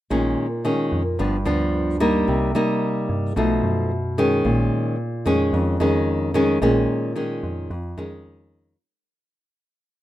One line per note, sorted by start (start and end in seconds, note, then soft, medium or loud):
0.10 0.36 A#1 medium
0.10 1.17 A#2 medium
0.10 0.46 D#3 medium
0.10 0.46 G#3 medium
0.10 0.46 C#4 medium
0.65 1.01 D#3 medium
0.65 1.02 G#3 medium
0.65 1.02 C#4 medium
0.92 1.18 F2 medium
1.19 1.45 G1 loud
1.19 2.25 G2 medium
1.19 1.35 F3 medium
1.19 1.35 B3 medium
1.19 1.36 D4 medium
1.45 2.24 D2 medium
1.45 1.96 F3 medium
1.45 1.96 B3 medium
1.45 1.97 D4 medium
2.00 2.51 G3 medium
2.00 2.51 A#3 medium
2.00 2.51 D#4 medium
2.28 2.53 C2 medium
2.28 3.34 C3 medium
2.55 3.32 G3 medium
2.55 3.32 A#3 medium
2.55 3.32 D#4 medium
3.09 3.35 G2 medium
3.36 3.62 B1 loud
3.36 4.42 B2 medium
3.36 3.90 F3 soft
3.36 3.91 A3 medium
3.36 3.91 D#4 medium
3.64 4.41 F#2 medium
4.18 4.95 D#3 medium
4.18 4.95 G#3 medium
4.18 4.96 C#4 medium
4.45 4.70 A#1 loud
4.45 5.51 A#2 medium
5.26 5.52 F2 medium
5.26 5.76 D#3 medium
5.26 5.76 G#3 medium
5.26 5.76 C#4 medium
5.53 5.79 F2 loud
5.53 6.59 F2 medium
5.80 6.58 F2 medium
5.80 6.30 D#3 medium
5.80 6.30 G#3 medium
5.80 6.31 C#4 medium
6.34 6.57 D#3 medium
6.34 6.58 G#3 medium
6.34 6.58 C#4 medium
6.62 6.87 A#1 medium
6.62 7.68 A#2 medium
6.62 7.12 D#3 medium
6.62 7.12 G#3 medium
6.62 7.12 C#4 medium
7.16 7.70 D#3 medium
7.16 7.70 G#3 medium
7.16 7.70 C#4 medium
7.43 7.69 F2 medium
7.70 7.96 F2 loud
7.70 8.77 F2 medium
7.98 8.75 F2 loud
7.98 8.75 D#3 medium
7.98 8.75 G#3 medium
7.98 8.75 C#4 medium